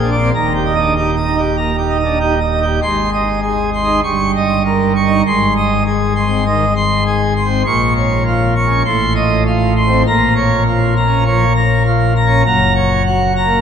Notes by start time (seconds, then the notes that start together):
Already playing: A#1 A#2
0.02 D4
0.11 D5
0.19 C4
0.34 D#1 D#2 A#5
0.55 G4
0.65 D#4
0.74 D#5
0.81 D4
0.97 D#4 G4
1.17 D#5
1.26 D#4
1.37 G4
1.57 A#2 A#5
1.78 G4
1.89 D#4
2.00 D#5
2.05 D4
2.20 D#4 G4
2.40 D#5
2.51 D#4
2.62 G4
2.82 G#1 G#2 C6
3.13 D#5
3.42 G#4
3.74 C6
3.84 D#4
4.04 G1 G2 C#6
4.36 D#5
4.66 A#4
4.96 C#6
5.06 D#4
5.27 G#1 G#2 C6
5.56 D#5
5.86 G#4
6.16 C6
6.26 C4
6.47 D#3 D#5
6.76 C6
7.06 G#4
7.37 C6
7.46 C4
7.66 A#1 A#2 C#6
7.97 C#5
8.27 F4
8.56 C#6
8.66 C#4
8.85 A1 A2 C6
9.16 D#5
9.47 F4
9.76 C6
9.87 C4
10.07 A#1 A#2 A#5
10.36 C#5
10.67 F4
10.97 A#5
11.06 C#4
11.26 F3 C#5
11.56 A#5
11.86 F4
12.16 A#5
12.26 C#4
12.46 F#1 F#2 A#5
12.75 C#5
13.06 F#4
13.37 A#5
13.46 A#3